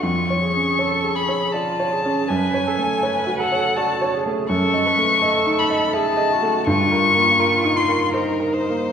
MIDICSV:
0, 0, Header, 1, 4, 480
1, 0, Start_track
1, 0, Tempo, 751880
1, 20, Time_signature, 3, 2, 24, 8
1, 1938, Tempo, 728155
1, 5298, Tempo, 840336
1, 5749, End_track
2, 0, Start_track
2, 0, Title_t, "Violin"
2, 0, Program_c, 0, 40
2, 10, Note_on_c, 0, 85, 78
2, 738, Note_on_c, 0, 83, 70
2, 748, Note_off_c, 0, 85, 0
2, 972, Note_on_c, 0, 81, 77
2, 981, Note_off_c, 0, 83, 0
2, 1457, Note_on_c, 0, 80, 82
2, 1467, Note_off_c, 0, 81, 0
2, 2161, Note_off_c, 0, 80, 0
2, 2165, Note_on_c, 0, 78, 83
2, 2417, Note_on_c, 0, 81, 76
2, 2427, Note_off_c, 0, 78, 0
2, 2659, Note_off_c, 0, 81, 0
2, 2890, Note_on_c, 0, 85, 100
2, 3620, Note_on_c, 0, 83, 76
2, 3630, Note_off_c, 0, 85, 0
2, 3848, Note_on_c, 0, 81, 89
2, 3858, Note_off_c, 0, 83, 0
2, 4327, Note_off_c, 0, 81, 0
2, 4331, Note_on_c, 0, 85, 108
2, 5057, Note_on_c, 0, 84, 85
2, 5066, Note_off_c, 0, 85, 0
2, 5294, Note_off_c, 0, 84, 0
2, 5298, Note_on_c, 0, 70, 73
2, 5529, Note_on_c, 0, 72, 74
2, 5538, Note_off_c, 0, 70, 0
2, 5749, Note_off_c, 0, 72, 0
2, 5749, End_track
3, 0, Start_track
3, 0, Title_t, "Grand piano"
3, 0, Program_c, 1, 0
3, 0, Control_c, 1, 64, 127
3, 19, Note_on_c, 1, 41, 52
3, 31, Control_c, 1, 64, 0
3, 147, Control_c, 1, 64, 127
3, 193, Note_on_c, 1, 73, 39
3, 353, Note_on_c, 1, 61, 39
3, 446, Note_off_c, 1, 73, 0
3, 503, Note_on_c, 1, 73, 41
3, 605, Note_off_c, 1, 61, 0
3, 666, Note_on_c, 1, 68, 39
3, 759, Note_off_c, 1, 73, 0
3, 821, Note_on_c, 1, 73, 47
3, 920, Note_off_c, 1, 68, 0
3, 982, Note_on_c, 1, 74, 40
3, 1077, Note_off_c, 1, 73, 0
3, 1142, Note_off_c, 1, 74, 0
3, 1147, Note_on_c, 1, 73, 48
3, 1309, Note_on_c, 1, 61, 46
3, 1403, Note_off_c, 1, 73, 0
3, 1440, Note_off_c, 1, 41, 0
3, 1468, Note_off_c, 1, 61, 0
3, 1469, Note_on_c, 1, 42, 58
3, 1478, Control_c, 1, 64, 0
3, 1574, Control_c, 1, 64, 127
3, 1623, Note_on_c, 1, 73, 47
3, 1776, Note_on_c, 1, 57, 43
3, 1875, Note_off_c, 1, 73, 0
3, 1934, Note_on_c, 1, 73, 52
3, 2033, Note_off_c, 1, 57, 0
3, 2090, Note_on_c, 1, 66, 47
3, 2196, Note_off_c, 1, 73, 0
3, 2259, Note_on_c, 1, 73, 47
3, 2355, Note_off_c, 1, 66, 0
3, 2424, Note_on_c, 1, 74, 42
3, 2518, Note_off_c, 1, 73, 0
3, 2584, Note_off_c, 1, 74, 0
3, 2584, Note_on_c, 1, 73, 54
3, 2746, Note_on_c, 1, 57, 45
3, 2836, Note_off_c, 1, 73, 0
3, 2875, Note_off_c, 1, 42, 0
3, 2899, Note_on_c, 1, 42, 66
3, 2902, Note_off_c, 1, 57, 0
3, 2912, Control_c, 1, 64, 0
3, 3014, Control_c, 1, 64, 127
3, 3058, Note_on_c, 1, 75, 48
3, 3218, Note_on_c, 1, 57, 47
3, 3317, Note_off_c, 1, 75, 0
3, 3377, Note_on_c, 1, 75, 54
3, 3477, Note_off_c, 1, 57, 0
3, 3536, Note_on_c, 1, 63, 48
3, 3636, Note_off_c, 1, 75, 0
3, 3695, Note_on_c, 1, 75, 53
3, 3794, Note_off_c, 1, 63, 0
3, 3849, Note_on_c, 1, 76, 48
3, 3953, Note_off_c, 1, 75, 0
3, 4003, Note_on_c, 1, 75, 54
3, 4014, Note_off_c, 1, 76, 0
3, 4168, Note_on_c, 1, 57, 50
3, 4267, Note_off_c, 1, 75, 0
3, 4312, Note_off_c, 1, 42, 0
3, 4332, Note_on_c, 1, 43, 61
3, 4333, Note_off_c, 1, 57, 0
3, 4351, Control_c, 1, 64, 0
3, 4444, Control_c, 1, 64, 127
3, 4495, Note_on_c, 1, 70, 51
3, 4651, Note_on_c, 1, 58, 47
3, 4750, Note_off_c, 1, 70, 0
3, 4810, Note_on_c, 1, 70, 52
3, 4910, Note_off_c, 1, 58, 0
3, 4970, Note_on_c, 1, 63, 49
3, 5070, Note_off_c, 1, 70, 0
3, 5135, Note_on_c, 1, 70, 56
3, 5231, Note_off_c, 1, 63, 0
3, 5299, Note_on_c, 1, 72, 45
3, 5388, Note_off_c, 1, 70, 0
3, 5447, Note_on_c, 1, 70, 51
3, 5450, Note_off_c, 1, 72, 0
3, 5616, Note_on_c, 1, 58, 47
3, 5713, Note_off_c, 1, 70, 0
3, 5749, Note_off_c, 1, 43, 0
3, 5749, Note_off_c, 1, 58, 0
3, 5749, End_track
4, 0, Start_track
4, 0, Title_t, "Cello"
4, 0, Program_c, 2, 42
4, 17, Note_on_c, 2, 65, 53
4, 268, Note_off_c, 2, 65, 0
4, 271, Note_on_c, 2, 68, 54
4, 508, Note_on_c, 2, 69, 65
4, 518, Note_off_c, 2, 68, 0
4, 733, Note_on_c, 2, 68, 62
4, 742, Note_off_c, 2, 69, 0
4, 984, Note_on_c, 2, 65, 51
4, 993, Note_off_c, 2, 68, 0
4, 1227, Note_on_c, 2, 68, 56
4, 1237, Note_off_c, 2, 65, 0
4, 1460, Note_off_c, 2, 68, 0
4, 1464, Note_on_c, 2, 71, 74
4, 1707, Note_on_c, 2, 69, 58
4, 1716, Note_off_c, 2, 71, 0
4, 1938, Note_on_c, 2, 71, 73
4, 1948, Note_off_c, 2, 69, 0
4, 2177, Note_on_c, 2, 69, 68
4, 2187, Note_off_c, 2, 71, 0
4, 2423, Note_on_c, 2, 66, 62
4, 2433, Note_off_c, 2, 69, 0
4, 2665, Note_on_c, 2, 68, 59
4, 2675, Note_off_c, 2, 66, 0
4, 2901, Note_off_c, 2, 68, 0
4, 2906, Note_on_c, 2, 69, 76
4, 3139, Note_on_c, 2, 71, 69
4, 3149, Note_off_c, 2, 69, 0
4, 3382, Note_off_c, 2, 71, 0
4, 3388, Note_on_c, 2, 69, 76
4, 3858, Note_on_c, 2, 68, 67
4, 3868, Note_off_c, 2, 69, 0
4, 4102, Note_on_c, 2, 66, 68
4, 4112, Note_off_c, 2, 68, 0
4, 4336, Note_off_c, 2, 66, 0
4, 4340, Note_on_c, 2, 65, 78
4, 5306, Note_on_c, 2, 63, 63
4, 5314, Note_off_c, 2, 65, 0
4, 5749, Note_off_c, 2, 63, 0
4, 5749, End_track
0, 0, End_of_file